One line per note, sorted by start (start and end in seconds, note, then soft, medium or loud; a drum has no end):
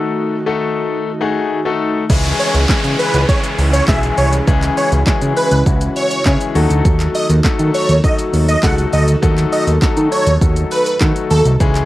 0.00 2.06 D#3 medium
0.00 0.35 A3 medium
0.00 2.06 A3 medium
0.00 0.35 D#4 medium
0.00 2.06 D#4 medium
0.00 0.35 F#4 medium
0.00 2.06 F#4 medium
0.00 0.35 A4 loud
0.46 1.09 A3 loud
0.46 1.09 D#4 medium
0.46 1.09 F#4 medium
0.46 1.09 A4 loud
1.21 1.58 A3 loud
1.21 1.58 D#4 medium
1.21 1.58 F#4 medium
1.21 1.58 G#4 loud
1.65 2.03 A3 loud
1.65 2.03 D#4 medium
1.65 2.03 F#4 medium
1.65 2.03 A4 loud
2.10 2.33 C#2 loud
2.10 6.51 C#3 medium
2.10 2.60 E3 loud
2.10 2.60 G#3 loud
2.10 6.51 C#4 medium
2.10 2.60 C#4 loud
2.10 6.51 E4 medium
2.10 2.60 E4 loud
2.10 4.45 G#4 medium
2.10 2.60 G#4 loud
2.10 kick loud
2.10 crash loud
2.10 downlifter medium
2.10 shaker medium
2.25 clap medium
2.25 closed hi-hat medium
2.25 shaker medium
2.40 2.50 C#5 medium
2.40 open hi-hat medium
2.40 shaker medium
2.54 2.66 C#2 loud
2.54 closed hi-hat medium
2.54 shaker medium
2.69 2.75 C#3 soft
2.69 3.19 E3 medium
2.69 3.19 G#3 medium
2.69 3.19 C#4 medium
2.69 3.19 E4 medium
2.69 3.19 G#4 loud
2.69 kick loud
2.69 snare medium
2.69 clap loud
2.69 shaker medium
2.84 2.96 C#3 medium
2.84 closed hi-hat medium
2.84 shaker medium
2.99 3.20 B4 medium
2.99 open hi-hat medium
2.99 shaker medium
3.14 3.25 C#2 medium
3.14 closed hi-hat medium
3.14 shaker medium
3.29 3.79 E3 medium
3.29 3.79 G#3 medium
3.29 3.79 C#4 medium
3.29 3.79 E4 medium
3.29 3.79 G#4 medium
3.29 3.39 C#5 medium
3.29 kick loud
3.29 shaker medium
3.44 closed hi-hat medium
3.44 shaker medium
3.58 3.81 C#2 medium
3.58 open hi-hat medium
3.58 shaker medium
3.73 3.84 C#5 medium
3.73 closed hi-hat medium
3.73 shaker medium
3.88 4.11 B1 loud
3.88 4.38 E3 medium
3.88 4.38 G#3 medium
3.88 4.38 C#4 medium
3.88 4.38 E4 medium
3.88 4.38 G#4 loud
3.88 3.99 E5 medium
3.88 kick loud
3.88 snare medium
3.88 clap loud
3.88 shaker medium
4.03 closed hi-hat medium
4.03 shaker medium
4.18 4.41 C2 loud
4.18 4.28 C#5 medium
4.18 open hi-hat medium
4.18 shaker medium
4.33 closed hi-hat medium
4.33 shaker medium
4.47 4.70 C#2 loud
4.47 4.97 E3 loud
4.47 4.97 G#3 loud
4.47 4.97 C#4 medium
4.47 4.97 E4 loud
4.47 11.56 F#4 medium
4.47 4.97 G#4 loud
4.47 kick loud
4.47 shaker medium
4.62 clap medium
4.62 closed hi-hat medium
4.62 shaker medium
4.77 4.88 C#5 medium
4.77 open hi-hat medium
4.77 shaker medium
4.92 5.03 C#2 loud
4.92 closed hi-hat medium
4.92 shaker medium
5.07 5.13 C#3 soft
5.07 5.57 E3 medium
5.07 5.57 G#3 medium
5.07 5.57 C#4 medium
5.07 5.57 E4 medium
5.07 5.57 G#4 loud
5.07 kick loud
5.07 snare medium
5.07 clap loud
5.07 shaker medium
5.22 5.33 C#3 loud
5.22 closed hi-hat medium
5.22 shaker medium
5.37 5.58 B4 medium
5.37 open hi-hat medium
5.37 shaker medium
5.51 5.63 C#2 medium
5.51 closed hi-hat medium
5.51 shaker medium
5.66 5.89 C#2 loud
5.66 6.16 E3 medium
5.66 6.16 G#3 medium
5.66 6.16 C#4 medium
5.66 6.16 E4 medium
5.66 6.16 F#4 medium
5.66 kick loud
5.66 shaker medium
5.81 closed hi-hat medium
5.81 shaker medium
5.96 6.38 C#5 medium
5.96 open hi-hat medium
5.96 shaker medium
6.11 closed hi-hat medium
6.11 shaker medium
6.25 6.37 C#3 loud
6.25 6.55 E3 medium
6.25 6.55 G#3 medium
6.25 6.55 C#4 medium
6.25 6.55 E4 medium
6.25 6.55 G#4 loud
6.25 kick loud
6.25 snare medium
6.25 clap loud
6.25 shaker medium
6.41 closed hi-hat medium
6.41 shaker medium
6.55 6.67 D#2 loud
6.55 11.56 D#3 medium
6.55 7.30 F#3 loud
6.55 7.30 A3 medium
6.55 7.30 D#4 medium
6.55 11.56 D#4 medium
6.55 7.30 F#4 loud
6.55 11.56 A4 medium
6.55 7.30 A4 loud
6.55 open hi-hat medium
6.55 shaker medium
6.70 6.82 D2 medium
6.70 closed hi-hat medium
6.70 shaker medium
6.85 7.08 D#2 loud
6.85 kick loud
6.85 shaker medium
7.00 clap medium
7.00 closed hi-hat medium
7.00 shaker medium
7.15 7.25 D#5 medium
7.15 open hi-hat medium
7.15 shaker medium
7.30 7.41 D#2 loud
7.30 closed hi-hat medium
7.30 shaker medium
7.44 7.50 D#3 soft
7.44 7.94 F#3 loud
7.44 7.94 A3 medium
7.44 7.94 D#4 medium
7.44 7.94 F#4 medium
7.44 7.95 A4 loud
7.44 kick loud
7.44 snare medium
7.44 clap loud
7.44 shaker medium
7.59 7.71 D#3 loud
7.59 closed hi-hat medium
7.59 shaker medium
7.74 7.96 C#5 medium
7.74 open hi-hat medium
7.74 shaker medium
7.89 8.00 D#2 medium
7.89 closed hi-hat medium
7.89 shaker medium
8.04 8.54 F#3 medium
8.04 8.54 A3 medium
8.04 8.54 D#4 medium
8.04 8.54 F#4 medium
8.04 8.54 A4 medium
8.04 8.15 D#5 medium
8.04 kick loud
8.04 shaker medium
8.19 closed hi-hat medium
8.19 shaker medium
8.34 8.56 D#2 loud
8.34 open hi-hat medium
8.34 shaker medium
8.48 8.59 D#5 medium
8.48 closed hi-hat medium
8.48 shaker medium
8.63 8.86 C#2 loud
8.63 9.13 F#3 medium
8.63 9.13 A3 medium
8.63 9.13 D#4 medium
8.63 9.13 F#4 medium
8.63 9.13 A4 loud
8.63 8.74 F#5 medium
8.63 kick loud
8.63 snare medium
8.63 clap loud
8.63 shaker medium
8.78 closed hi-hat medium
8.78 shaker medium
8.93 9.16 D2 medium
8.93 9.04 D#5 medium
8.93 open hi-hat medium
8.93 shaker medium
9.08 closed hi-hat medium
9.08 shaker medium
9.22 9.46 D#2 loud
9.22 9.72 F#3 loud
9.22 9.73 A3 loud
9.22 9.73 D#4 loud
9.22 9.73 F#4 medium
9.22 9.73 A4 loud
9.22 kick loud
9.22 shaker medium
9.38 clap medium
9.38 closed hi-hat medium
9.38 shaker medium
9.52 9.63 D#5 medium
9.52 open hi-hat medium
9.52 shaker medium
9.67 9.79 D#2 loud
9.67 closed hi-hat medium
9.67 shaker medium
9.82 9.88 D#3 soft
9.82 10.32 F#3 medium
9.82 10.32 A3 medium
9.82 10.32 D#4 medium
9.82 10.32 F#4 medium
9.82 10.32 A4 loud
9.82 kick loud
9.82 snare loud
9.82 clap loud
9.82 shaker medium
9.97 10.08 D#3 loud
9.97 closed hi-hat medium
9.97 shaker medium
10.12 10.33 C#5 medium
10.12 open hi-hat medium
10.12 shaker medium
10.27 10.38 D#2 medium
10.27 closed hi-hat medium
10.27 shaker medium
10.41 10.64 D#2 loud
10.41 10.91 F#3 medium
10.41 10.91 A3 medium
10.41 10.91 D#4 medium
10.41 10.91 F#4 medium
10.41 10.92 A4 medium
10.41 kick loud
10.41 shaker medium
10.56 closed hi-hat medium
10.56 shaker medium
10.71 10.93 B4 medium
10.71 open hi-hat medium
10.71 shaker medium
10.86 closed hi-hat medium
10.86 shaker medium
11.01 11.12 D#3 loud
11.01 11.51 F#3 medium
11.01 11.51 A3 medium
11.01 11.51 D#4 medium
11.01 11.51 F#4 medium
11.01 11.51 A4 loud
11.01 kick loud
11.01 snare medium
11.01 clap loud
11.01 shaker medium
11.16 closed hi-hat medium
11.16 shaker medium
11.31 11.42 D#2 medium
11.31 11.41 A4 medium
11.31 open hi-hat medium
11.31 shaker medium
11.45 11.57 C2 loud
11.45 closed hi-hat medium
11.45 shaker medium
11.60 11.83 C#2 loud
11.60 11.85 C#3 medium
11.60 11.85 E3 loud
11.60 11.85 G#3 loud
11.60 11.85 C#4 loud
11.60 11.85 C#4 medium
11.60 11.85 E4 loud
11.60 11.85 E4 medium
11.60 11.85 G#4 medium
11.60 11.85 G#4 loud
11.60 kick loud
11.60 shaker medium
11.75 clap medium
11.75 closed hi-hat medium
11.75 shaker medium